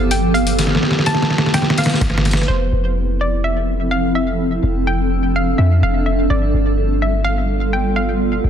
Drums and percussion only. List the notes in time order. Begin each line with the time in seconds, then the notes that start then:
0.11 closed hi-hat
0.35 closed hi-hat
0.47 closed hi-hat
0.59 snare, closed hi-hat
0.67 snare
0.75 snare
0.83 snare
0.91 snare
0.99 snare
1.06 snare, closed hi-hat
1.15 snare
1.22 snare
1.30 snare
1.38 snare
1.46 snare
1.54 snare, closed hi-hat
1.62 snare
1.70 snare
1.78 snare, closed hi-hat
1.84 snare, closed hi-hat
1.89 closed hi-hat
1.94 snare, closed hi-hat
2.01 kick, snare, closed hi-hat
2.10 snare
2.18 snare
2.25 snare, closed hi-hat
2.31 snare, closed hi-hat
2.37 closed hi-hat
2.41 snare, closed hi-hat